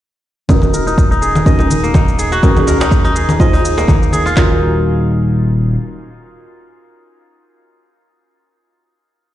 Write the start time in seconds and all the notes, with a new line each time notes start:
0.49 D#1 C#4 D#4 F4 F#4 A#4, kick, low conga, cabasa
0.62 high conga, cabasa
0.74 A#4, cabasa
0.87 D#4, cabasa
0.98 kick, cabasa
1.11 D#4, cabasa
1.22 G#4, cabasa
1.35 high conga, cabasa
1.46 D#1 C#4 D#4 F#4 A#4 D#5, kick, cabasa
1.59 D#4, low conga, cabasa
1.71 high conga, cabasa
1.84 A#3, cabasa
1.94 D#4, kick, high conga, cabasa
2.08 cabasa
2.19 G#4, cabasa
2.32 F#4, cabasa
2.43 D#1 C#4 D#4 F#4 G#4 A#4, kick, low conga, cabasa
2.57 high conga, cabasa
2.67 A#4, djembe tone, cabasa
2.80 D#4, djembe slap, cabasa
2.91 kick, cabasa
3.04 D#4, djembe tone, cabasa
3.15 G#4, cabasa
3.29 high conga, cabasa
3.40 D#1 D#4 F4 G#4 C5 D#5, kick, cabasa
3.53 D#4, djembe tone, cabasa
3.65 cabasa
3.77 A#3, djembe slap, cabasa
3.88 D#4, kick, djembe tone, high conga, cabasa
4.03 cabasa
4.13 G#4, high conga, cabasa
4.26 F4, cabasa
4.37 D#1 C#4 D#4 F4 F#4 A#4, kick, snare, clap